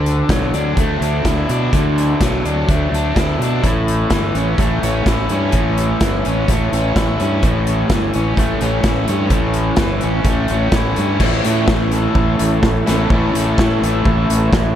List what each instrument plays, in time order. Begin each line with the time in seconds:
Already playing: fingered electric bass D2, overdriven electric guitar D3 D4 A4
0.06 closed hi-hat
0.29 fingered electric bass B1, overdriven electric guitar F#3, kick, snare, closed hi-hat
0.53 fingered electric bass D2, overdriven electric guitar D4, closed hi-hat
0.77 fingered electric bass D2, overdriven electric guitar A3, kick, closed hi-hat
1.01 fingered electric bass D2, overdriven electric guitar D4, closed hi-hat
1.25 fingered electric bass D2, overdriven electric guitar E4, kick, snare, closed hi-hat
1.49 fingered electric bass B2, overdriven electric guitar D4, closed hi-hat
1.73 fingered electric bass D2, overdriven electric guitar D3, kick, closed hi-hat
1.98 closed hi-hat
2.21 fingered electric bass B1, overdriven electric guitar F#3, kick, snare, closed hi-hat
2.45 fingered electric bass D2, overdriven electric guitar D4, closed hi-hat
2.68 fingered electric bass D2, overdriven electric guitar A3, kick, closed hi-hat
2.92 fingered electric bass D2, overdriven electric guitar D4, closed hi-hat
3.16 fingered electric bass D2, overdriven electric guitar E4, kick, snare, closed hi-hat
3.39 fingered electric bass B2, overdriven electric guitar D4, closed hi-hat
3.64 fingered electric bass A1, overdriven electric guitar A2, kick, closed hi-hat
3.88 closed hi-hat
4.10 fingered electric bass G1, overdriven electric guitar E3, kick, snare, closed hi-hat
4.35 fingered electric bass A1, overdriven electric guitar C#4, closed hi-hat
4.58 fingered electric bass A1, overdriven electric guitar A3, kick, closed hi-hat
4.82 fingered electric bass A1, overdriven electric guitar C#4, closed hi-hat
5.06 fingered electric bass A1, overdriven electric guitar E4, kick, snare, closed hi-hat
5.29 fingered electric bass G2, overdriven electric guitar C#4, closed hi-hat
5.52 fingered electric bass A1, overdriven electric guitar A2, kick, closed hi-hat
5.78 closed hi-hat
6.01 fingered electric bass G1, overdriven electric guitar E3, kick, snare, closed hi-hat
6.25 fingered electric bass A1, overdriven electric guitar C#4, closed hi-hat
6.48 fingered electric bass A1, overdriven electric guitar A3, kick, closed hi-hat
6.72 fingered electric bass A1, overdriven electric guitar C#4, closed hi-hat
6.96 fingered electric bass A1, overdriven electric guitar E4, kick, snare, closed hi-hat
7.20 fingered electric bass G2, overdriven electric guitar C#4, closed hi-hat
7.42 fingered electric bass A1, overdriven electric guitar A2, kick, closed hi-hat
7.67 closed hi-hat
7.90 fingered electric bass G1, overdriven electric guitar E3, kick, snare, closed hi-hat
8.13 fingered electric bass A1, overdriven electric guitar C#4, closed hi-hat
8.37 fingered electric bass A1, overdriven electric guitar A3, kick, closed hi-hat
8.61 fingered electric bass A1, overdriven electric guitar C#4, closed hi-hat
8.84 fingered electric bass A1, overdriven electric guitar E4, kick, snare, closed hi-hat
9.08 fingered electric bass G2, overdriven electric guitar C#4, closed hi-hat
9.30 fingered electric bass A1, overdriven electric guitar A2, kick, closed hi-hat
9.54 closed hi-hat
9.76 fingered electric bass G1, overdriven electric guitar E3, kick, snare, closed hi-hat
10.01 fingered electric bass A1, overdriven electric guitar C#4, closed hi-hat
10.25 fingered electric bass A1, overdriven electric guitar A3, kick, closed hi-hat
10.48 fingered electric bass A1, overdriven electric guitar C#4, closed hi-hat
10.72 fingered electric bass A1, kick, snare, closed hi-hat
10.76 overdriven electric guitar E4
10.96 fingered electric bass G2, overdriven electric guitar C#4, closed hi-hat
11.19 fingered electric bass A1, overdriven electric guitar A2 E3, analog synth pad E4 A4 C#5 A5, kick, crash
11.23 overdriven electric guitar A3 C#4 E4
11.44 fingered electric bass A2, closed hi-hat
11.68 fingered electric bass A1, kick, snare
11.91 closed hi-hat
12.15 fingered electric bass A1, kick
12.39 fingered electric bass A1, closed hi-hat
12.63 fingered electric bass A1, kick, snare
12.86 fingered electric bass A1, overdriven electric guitar A2 E3 A3 C#4 E4, snare, closed hi-hat
13.10 fingered electric bass A1, overdriven electric guitar A2 E3 A3, kick
13.14 overdriven electric guitar C#4 E4
13.35 fingered electric bass A1, closed hi-hat
13.58 fingered electric bass A2, kick, snare
13.82 fingered electric bass A1, closed hi-hat
14.05 fingered electric bass A1, kick
14.30 fingered electric bass A1, closed hi-hat
14.53 fingered electric bass A1, kick, snare